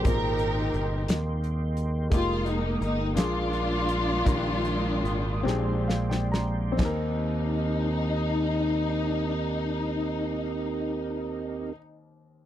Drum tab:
CC |------------|------------|------------|x-----------|
HH |x-x-x-x-x-x-|x-x-x-x-x-x-|x-x-x-------|------------|
SD |------o-----|------o-----|------o-ooo-|o-----------|
BD |o-----------|o-----------|o-----------|o-----------|

CC |------------|
HH |------------|
SD |------------|
BD |------------|